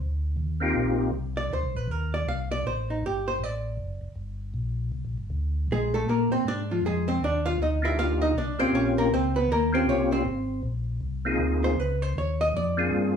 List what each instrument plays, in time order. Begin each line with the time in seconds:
0.00 tonewheel organ D2
0.37 tonewheel organ D#2
0.60 tonewheel organ A#3 C4 D#4 F4 G4
0.75 tonewheel organ A#1
1.12 tonewheel organ C2
1.37 hollow-body jazz guitar D5
1.50 tonewheel organ D2, hollow-body jazz guitar C5
1.63 tonewheel organ C2
1.75 tonewheel organ A#1, hollow-body jazz guitar B4
1.87 tonewheel organ D#2, hollow-body jazz guitar A#4
2.14 hollow-body jazz guitar D5
2.26 tonewheel organ C2, hollow-body jazz guitar F5
2.51 hollow-body jazz guitar D5
2.65 tonewheel organ A1, hollow-body jazz guitar C5
2.90 hollow-body jazz guitar D#4
3.02 tonewheel organ G1
3.06 hollow-body jazz guitar G4
3.28 hollow-body jazz guitar C5
3.40 tonewheel organ A1, hollow-body jazz guitar D5
3.77 tonewheel organ F#1
4.01 tonewheel organ F#1
4.15 tonewheel organ G1
4.54 tonewheel organ A#1
4.92 tonewheel organ C2
5.05 tonewheel organ A#1
5.17 tonewheel organ G1
5.30 tonewheel organ D2
5.68 tonewheel organ A#1, hollow-body jazz guitar G#4
5.73 hollow-body jazz guitar G#3
5.94 hollow-body jazz guitar A3 A4
6.06 tonewheel organ A#2, hollow-body jazz guitar A#3 A#4
6.30 tonewheel organ A#2, hollow-body jazz guitar C4 C5
6.44 tonewheel organ G#2, hollow-body jazz guitar D4 D5
6.71 hollow-body jazz guitar F3 F4
6.82 tonewheel organ F2
6.86 hollow-body jazz guitar G#3 G#4
7.08 hollow-body jazz guitar C4 C5
7.20 tonewheel organ D#2
7.24 hollow-body jazz guitar D4 D5
7.46 hollow-body jazz guitar F4 F5
7.58 tonewheel organ D2, hollow-body jazz guitar D#4
7.63 hollow-body jazz guitar D#5
7.82 tonewheel organ A#3 D4 D#4 F4 G4, hollow-body jazz guitar E4 E5
7.96 tonewheel organ D2, hollow-body jazz guitar F4 F5
8.22 hollow-body jazz guitar D#4 D#5
8.34 tonewheel organ C2, hollow-body jazz guitar D4 D5
8.59 tonewheel organ C2 A#3 C4 C#4 F4 G4, hollow-body jazz guitar C4 C5
8.72 tonewheel organ A#1, hollow-body jazz guitar C#4 C#5
8.98 hollow-body jazz guitar A#3 A#4
9.11 tonewheel organ C#2, hollow-body jazz guitar C4 C5
9.36 hollow-body jazz guitar B3 B4
9.48 tonewheel organ D#2, hollow-body jazz guitar A#4
9.52 hollow-body jazz guitar A#3
9.73 tonewheel organ A#3 C4 C#4 F4 G4, hollow-body jazz guitar C4 C5
9.86 tonewheel organ C2, hollow-body jazz guitar C#4 C#5
10.12 hollow-body jazz guitar C4 C5
10.25 tonewheel organ G#1
10.63 tonewheel organ A#1
11.01 tonewheel organ C2
11.25 tonewheel organ A#3 C4 D#4 F4 G#4
11.39 tonewheel organ D2
11.64 hollow-body jazz guitar C5
11.77 tonewheel organ C#2, hollow-body jazz guitar B4
12.02 hollow-body jazz guitar C5
12.16 tonewheel organ D#2, hollow-body jazz guitar C#5
12.41 hollow-body jazz guitar D#5
12.54 tonewheel organ F2, hollow-body jazz guitar D5
12.77 tonewheel organ A#3 C4 D4 F4 G#4
12.91 tonewheel organ G2